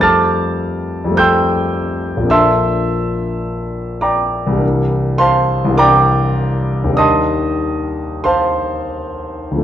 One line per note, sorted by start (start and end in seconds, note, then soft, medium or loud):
0.00 1.03 F2 medium
0.00 1.06 G3 soft
0.00 1.09 A3 soft
0.00 1.12 C4 soft
0.00 1.15 A4 soft
0.00 1.16 A5 medium
0.00 1.16 D6 medium
0.00 1.16 F6 medium
0.00 1.19 A6 medium
1.04 2.21 F2 medium
1.04 2.23 G3 soft
1.11 2.25 A3 medium
1.11 2.26 C4 medium
1.17 2.28 A4 medium
1.17 2.28 G5 medium
1.17 2.28 C6 medium
1.17 2.28 E6 medium
1.17 2.31 G6 loud
2.17 4.50 A#1 medium
2.17 4.52 F3 medium
2.23 4.53 A#3 soft
2.23 4.54 D4 soft
2.29 4.56 A4 medium
2.29 3.99 E5 medium
2.29 3.99 A5 medium
2.29 3.99 C6 medium
2.29 4.03 E6 loud
4.01 4.57 D5 medium
4.01 4.57 G5 medium
4.01 4.57 A#5 medium
4.01 4.61 D6 medium
4.47 5.63 C2 medium
4.47 5.66 E3 soft
4.52 5.69 G3 medium
4.52 5.72 D4 soft
4.59 5.75 A#4 soft
5.18 5.76 C5 medium
5.18 5.76 F5 medium
5.18 5.76 A5 medium
5.18 5.79 C6 loud
5.65 6.89 C2 medium
5.65 6.90 E3 medium
5.70 6.88 G3 medium
5.70 6.92 D4 medium
5.77 6.94 A#4 medium
5.77 6.96 D5 medium
5.77 6.96 G5 medium
5.77 6.96 A#5 medium
5.77 6.99 D6 loud
6.84 9.56 D#2 medium
6.84 9.58 D#3 soft
6.90 9.59 G3 soft
6.90 9.59 D4 medium
6.96 9.62 A#4 medium
6.96 8.23 D#5 medium
6.96 8.23 A5 medium
6.96 8.22 C6 medium
6.96 8.26 D#6 loud
8.24 9.63 C5 medium
8.24 9.63 F5 medium
8.24 9.63 A5 medium
8.24 9.64 C6 medium
9.51 9.64 D2 medium
9.51 9.64 F3 soft
9.57 9.64 A3 soft
9.57 9.64 D4 soft